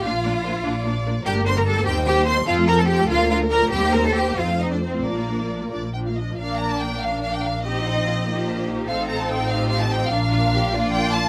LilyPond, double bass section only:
\new Staff \with { instrumentName = "Double bass section" } { \clef bass \time 6/8 \key bes \major \tempo 4. = 97 bes,,4. bes,,4. | g,,4. ees,4. | f,4. d,4. | ees,4. f,4. |
bes,,4. bes,,4. | bes,,2.~ | bes,,2. | a,,2. |
bes,,2. | }